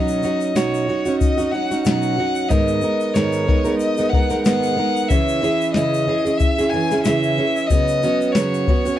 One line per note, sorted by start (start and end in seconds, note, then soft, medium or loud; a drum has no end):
0.00 0.23 B2 medium
0.00 0.22 F#3 medium
0.00 0.23 C#4 medium
0.00 0.23 D#4 medium
0.00 0.23 F#4 medium
0.00 0.58 D#5 medium
0.08 shaker medium
0.22 0.55 F#3 medium
0.22 0.55 C#4 medium
0.22 0.55 D#4 medium
0.22 0.56 F#4 medium
0.22 shaker medium
0.22 shaker soft
0.41 shaker soft
0.42 shaker medium
0.55 0.88 B2 medium
0.55 0.86 F#3 medium
0.55 0.87 C#4 medium
0.55 0.88 D#4 medium
0.55 0.88 F#4 medium
0.55 1.19 C#5 medium
0.55 snare loud
0.55 shaker medium
0.74 shaker soft
0.87 1.06 F#3 medium
0.87 1.06 C#4 medium
0.87 1.06 D#4 medium
0.87 1.04 F#4 medium
0.87 shaker medium
1.05 1.39 C#4 soft
1.05 1.38 D#4 medium
1.05 1.36 F#4 medium
1.05 shaker medium
1.19 1.53 D#5 medium
1.19 kick medium
1.19 shaker medium
1.38 1.53 C#4 soft
1.38 1.53 D#4 medium
1.38 1.53 F#4 medium
1.38 shaker medium
1.51 1.71 F#3 medium
1.51 1.71 C#4 medium
1.51 1.71 D#4 medium
1.51 1.70 F#4 medium
1.51 1.83 F#5 medium
1.51 shaker soft
1.71 1.85 C#4 soft
1.71 1.85 D#4 medium
1.71 1.86 F#4 medium
1.71 snare soft
1.71 shaker medium
1.84 2.18 B2 medium
1.84 2.16 F#3 medium
1.84 2.17 C#4 medium
1.84 2.18 D#4 medium
1.84 2.18 F#4 medium
1.84 2.51 F#5 loud
1.84 snare loud
1.84 shaker medium
2.03 shaker medium
2.17 2.50 F#3 medium
2.17 2.50 C#4 medium
2.17 2.50 D#4 medium
2.17 2.50 F#4 medium
2.17 shaker medium
2.35 shaker soft
2.49 2.83 G#2 medium
2.49 2.83 D#3 medium
2.49 2.81 G#3 medium
2.49 2.82 B3 medium
2.49 2.83 D#4 medium
2.49 2.83 A#4 medium
2.49 3.15 D#5 loud
2.49 kick loud
2.49 shaker medium
2.68 shaker medium
2.81 3.15 G#3 medium
2.81 3.15 B3 medium
2.81 shaker soft
2.83 3.15 D#4 medium
2.83 3.15 A#4 medium
2.83 shaker medium
3.00 shaker soft
3.02 shaker medium
3.14 3.48 G#2 medium
3.14 3.48 D#3 medium
3.14 3.45 G#3 medium
3.14 3.46 B3 medium
3.14 3.47 D#4 medium
3.14 3.47 A#4 medium
3.14 3.78 C#5 medium
3.14 snare loud
3.14 shaker medium
3.33 shaker soft
3.46 3.65 G#3 medium
3.46 3.65 B3 medium
3.46 3.64 D#4 medium
3.46 3.63 A#4 medium
3.46 kick medium
3.46 shaker medium
3.65 3.99 G#3 soft
3.65 3.98 B3 soft
3.65 3.97 D#4 medium
3.65 3.97 A#4 medium
3.65 shaker medium
3.79 4.11 D#5 loud
3.79 shaker medium
3.97 4.11 G#3 soft
3.97 4.13 B3 medium
3.97 4.13 D#4 medium
3.97 4.13 A#4 medium
3.97 shaker soft
4.10 4.31 G#3 medium
4.10 4.44 F#5 medium
4.10 kick medium
4.14 4.31 B3 medium
4.14 4.30 D#4 medium
4.14 4.30 A#4 medium
4.14 shaker soft
4.30 4.45 G#3 soft
4.30 4.45 B3 soft
4.30 4.46 D#4 soft
4.30 4.46 A#4 medium
4.30 snare soft
4.30 shaker medium
4.44 4.78 G#2 medium
4.44 4.78 D#3 medium
4.44 4.76 G#3 medium
4.44 4.76 B3 medium
4.44 4.78 D#4 medium
4.44 4.78 A#4 medium
4.44 5.10 F#5 loud
4.44 snare loud
4.44 shaker medium
4.63 shaker soft
4.77 5.10 G#3 medium
4.77 5.10 B3 medium
4.77 5.11 D#4 medium
4.77 5.11 A#4 medium
4.77 shaker medium
4.96 shaker soft
5.08 5.43 C#3 medium
5.08 5.41 E3 medium
5.08 5.42 C#4 medium
5.08 5.42 E4 medium
5.08 5.43 G#4 medium
5.08 5.71 E5 loud
5.08 kick loud
5.08 shaker medium
5.28 shaker medium
5.41 5.74 E3 medium
5.41 5.74 C#4 medium
5.41 5.75 E4 medium
5.41 shaker medium
5.44 5.75 G#4 medium
5.44 shaker soft
5.61 shaker medium
5.61 shaker soft
5.72 6.08 C#3 medium
5.72 6.06 E3 medium
5.72 6.07 C#4 medium
5.72 6.39 D#5 loud
5.72 snare loud
5.72 shaker medium
5.76 6.08 E4 medium
5.76 6.08 G#4 medium
5.76 shaker medium
5.94 shaker soft
6.07 6.25 E3 medium
6.07 6.26 C#4 medium
6.07 6.25 E4 medium
6.07 6.24 G#4 medium
6.07 shaker medium
6.25 6.59 C#4 soft
6.25 6.59 E4 medium
6.25 6.57 G#4 medium
6.25 shaker medium
6.37 6.71 E5 loud
6.37 kick medium
6.37 shaker medium
6.37 shaker soft
6.58 6.73 C#4 soft
6.58 6.74 E4 medium
6.58 6.73 G#4 medium
6.58 shaker soft
6.70 6.91 E3 medium
6.70 7.02 G#5 loud
6.70 shaker soft
6.74 6.91 C#4 medium
6.74 6.92 E4 medium
6.74 6.90 G#4 medium
6.91 7.05 C#4 medium
6.91 7.06 E4 medium
6.91 7.06 G#4 medium
6.91 snare soft
6.91 shaker medium
6.91 shaker soft
7.03 7.38 C#3 medium
7.03 7.37 E3 medium
7.03 7.37 C#4 medium
7.03 7.69 E5 loud
7.03 snare loud
7.03 shaker medium
7.07 7.39 E4 medium
7.07 7.39 G#4 medium
7.23 shaker soft
7.38 7.70 E3 medium
7.38 7.70 C#4 medium
7.38 7.71 E4 medium
7.38 7.71 G#4 medium
7.38 shaker medium
7.56 shaker soft
7.67 8.03 C#3 medium
7.67 8.02 F#3 medium
7.67 8.02 B3 medium
7.67 8.34 D#5 loud
7.67 kick loud
7.67 shaker medium
7.71 8.03 C#4 medium
7.71 8.03 F#4 medium
7.88 shaker medium
8.02 8.35 F#3 medium
8.02 8.35 B3 medium
8.02 8.35 C#4 medium
8.02 8.36 F#4 medium
8.02 shaker medium
8.02 shaker soft
8.21 shaker soft
8.21 shaker medium
8.32 8.68 C#3 medium
8.32 8.66 F#3 medium
8.32 8.98 C#5 medium
8.32 snare loud
8.32 shaker medium
8.36 8.67 B3 medium
8.36 8.68 C#4 medium
8.36 8.69 F#4 medium
8.54 shaker soft
8.68 8.86 F#3 medium
8.68 8.86 B3 medium
8.68 8.86 C#4 medium
8.68 8.84 F#4 medium
8.68 kick medium
8.68 shaker medium
8.85 8.99 B3 soft
8.85 8.99 C#4 soft
8.85 8.99 F#4 medium
8.85 shaker medium
8.96 8.99 G#5 loud